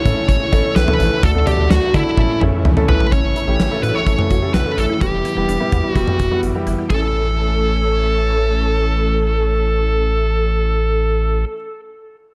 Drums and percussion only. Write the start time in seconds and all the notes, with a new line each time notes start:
0.06 kick, closed hi-hat
0.29 kick, closed hi-hat
0.52 kick, closed hi-hat, cowbell
0.76 snare, closed hi-hat
0.88 mid tom
1.00 closed hi-hat
1.23 kick, closed hi-hat
1.47 closed hi-hat, mid tom, cowbell
1.71 snare, closed hi-hat
1.94 kick, closed hi-hat, cowbell
2.17 kick, high tom
2.41 mid tom
2.65 mid tom
2.77 mid tom
2.89 floor tom
3.00 floor tom
3.12 kick, closed hi-hat
3.36 closed hi-hat
3.60 snare, closed hi-hat
3.83 closed hi-hat
4.07 kick, closed hi-hat
4.19 mid tom
4.30 kick, closed hi-hat
4.54 snare, closed hi-hat
4.78 closed hi-hat
5.01 kick, closed hi-hat
5.25 closed hi-hat
5.49 closed hi-hat
5.72 kick, closed hi-hat
5.96 kick, closed hi-hat
6.08 mid tom
6.19 kick, closed hi-hat
6.43 closed hi-hat
6.67 closed hi-hat
6.90 kick, ride